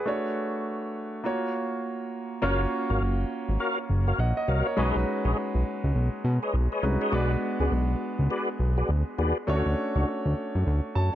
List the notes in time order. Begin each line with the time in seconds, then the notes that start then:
Already playing: G#4 B4
0.06 A3 D4 F#4 C#5
1.24 A#3 F4 F#4 C#5
2.42 F#1 A#3 C#4 F4 F#4 A#4 C#5 F5
2.89 G#1 F#4 A#4 C#5 F5
3.01 F#1
3.49 G#1
3.60 F#4 A#4 C#5 F5
3.90 F#1
4.07 F#4 A#4 C#5 F5
4.19 A#1 D#5 F#5
4.37 D#5
4.48 C2 F#4 A#4 C#5 F5
4.66 A#4 C#5
4.77 B1 G#3 C#4 D#4 F#4 G#4 B4 C#5 D#5
4.96 B1
5.25 A#1 G#4 B4 C#5 D#5
5.55 B1
5.84 C#2
5.95 B1
6.24 B2
6.43 G#4 B4 C#5 D#5
6.54 B1
6.72 G#4 B4 C#5 D#5
6.83 C2 G#3 C#4 D#4 F#4 B4
7.01 G#4 B4 C#5 D#5
7.12 B1 G#3 B3 D4 F#4 G#4 B4 D5
7.60 C#2 F#4 G#4 B4 D5
7.72 B1
8.19 C#2
8.30 F#4 G#4 B4 D5
8.59 B1
8.77 F#4 G#4 B4 D5
8.89 D2
9.18 D#2 F#4 G#4 B4 D5
9.47 D2 A3 C#4 D4 F#4 A4 C#5
9.66 D2
9.96 C#2 D4 F#4 A4 C#5
10.25 D2
10.55 F#2
10.66 D2
10.95 F#2 A5